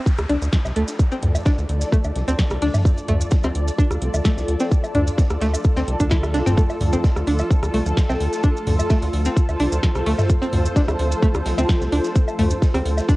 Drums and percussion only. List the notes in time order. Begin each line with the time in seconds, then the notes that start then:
0.06 kick, shaker, maracas
0.18 cross-stick, closed hi-hat, maracas
0.29 closed hi-hat, shaker
0.42 closed hi-hat, maracas
0.53 kick, snare, maracas, shaker
0.65 snare, low woodblock, maracas
0.76 closed hi-hat, shaker
0.88 snare, maracas
0.99 kick, shaker, maracas
1.12 maracas
1.22 closed hi-hat, mid tom, shaker
1.35 closed hi-hat, low woodblock, maracas
1.45 kick, snare, shaker, maracas
1.58 maracas
1.69 closed hi-hat, shaker
1.81 snare, maracas
1.92 kick, shaker, maracas
2.04 closed hi-hat, low woodblock, maracas
2.16 snare, closed hi-hat, shaker
2.28 closed hi-hat, maracas
2.39 kick, snare, maracas, shaker
2.50 cross-stick, closed hi-hat, maracas
2.62 closed hi-hat, open hi-hat
2.74 snare, mid tom, low woodblock, maracas
2.85 kick, shaker, maracas
2.98 closed hi-hat, maracas
3.09 closed hi-hat, mid tom, shaker
3.21 maracas
3.31 kick, snare, maracas, shaker
3.43 cross-stick, low woodblock, maracas
3.55 closed hi-hat, shaker
3.68 closed hi-hat, maracas
3.78 kick, shaker, maracas
3.91 cross-stick, closed hi-hat, maracas
4.01 closed hi-hat, shaker
4.14 closed hi-hat, low woodblock, maracas
4.24 kick, snare, maracas
4.37 snare, maracas
4.48 closed hi-hat, shaker
4.60 snare, maracas
4.71 kick, shaker, maracas
4.84 low woodblock, maracas
4.95 closed hi-hat, mid tom, shaker
5.07 closed hi-hat, maracas
5.18 kick, snare, shaker, maracas
5.30 cross-stick, maracas
5.40 snare, closed hi-hat, shaker
5.53 low woodblock, maracas
5.64 kick, shaker, maracas
5.76 snare, closed hi-hat, shaker, maracas
5.88 closed hi-hat
6.00 kick, closed hi-hat, shaker, maracas
6.10 kick, snare, shaker, maracas
6.23 cross-stick, low woodblock, maracas
6.34 snare, closed hi-hat, shaker
6.46 snare, mid tom, maracas
6.58 kick, shaker, maracas
6.70 closed hi-hat, low woodblock, maracas
6.80 mid tom, open hi-hat, shaker
6.93 maracas
7.04 kick, snare, shaker, maracas
7.16 cross-stick, maracas
7.26 open hi-hat, shaker
7.38 closed hi-hat, low woodblock, maracas
7.50 kick, shaker, maracas
7.63 cross-stick, closed hi-hat, maracas
7.74 open hi-hat, shaker
7.86 closed hi-hat, maracas
7.97 kick, snare, shaker, maracas
8.09 snare, low woodblock, maracas
8.20 open hi-hat, shaker
8.33 snare, maracas
8.43 kick, maracas, shaker
8.57 maracas
8.67 mid tom, open hi-hat, shaker
8.79 closed hi-hat, low woodblock, maracas
8.90 kick, snare, maracas, shaker
9.02 open hi-hat, maracas
9.13 open hi-hat, shaker
9.25 snare, maracas
9.37 kick, shaker, maracas
9.49 closed hi-hat, low woodblock, maracas
9.59 snare, open hi-hat, shaker
9.72 closed hi-hat, maracas
9.83 kick, snare, maracas, shaker
9.95 cross-stick, closed hi-hat, maracas
10.06 open hi-hat
10.18 snare, mid tom, low woodblock, maracas
10.29 kick, shaker, maracas
10.42 closed hi-hat, maracas
10.53 mid tom, open hi-hat, shaker
10.66 maracas
10.76 kick, snare, shaker, maracas
10.88 cross-stick, low woodblock, maracas
10.99 open hi-hat, shaker
11.12 closed hi-hat, maracas
11.23 kick, maracas, shaker
11.34 cross-stick, closed hi-hat, maracas
11.45 snare, open hi-hat, shaker
11.58 closed hi-hat, low woodblock, maracas
11.69 kick, snare, shaker, maracas
11.81 snare, maracas
11.92 open hi-hat, shaker
12.04 snare, maracas
12.16 kick, shaker, maracas
12.28 low woodblock, maracas
12.39 mid tom, open hi-hat, shaker
12.50 closed hi-hat, maracas
12.62 kick, snare, shaker, maracas
12.74 cross-stick, open hi-hat, maracas
12.85 open hi-hat, shaker
12.97 snare, low woodblock, maracas
13.08 kick, snare, shaker, maracas